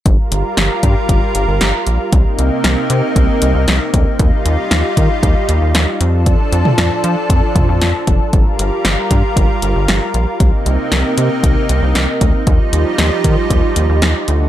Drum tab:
HH |x-x-x-x-x-x-x-x-|x-x-x-x-x-x-x-x-|x-x-x-x-x-x-x-x-|x-x-x-x-x-x-x-x-|
SD |----o-------o---|----o-------o---|----o-------o---|----o-------o---|
T2 |----------------|----------------|----------------|---o------o-----|
BD |o-----o-o-------|o-------o-----o-|o-----o-o-------|o-------o-o---o-|

HH |x-x-x-x-x-x-x-x-|x-x-x-x-x-x-x-x-|x-x-x-x-x-x-x-x-|
SD |----o-------o---|----o-------o---|----o-------o---|
T2 |----------------|----------------|----------------|
BD |o-----o-o-------|o-------o-----o-|o-----o-o-------|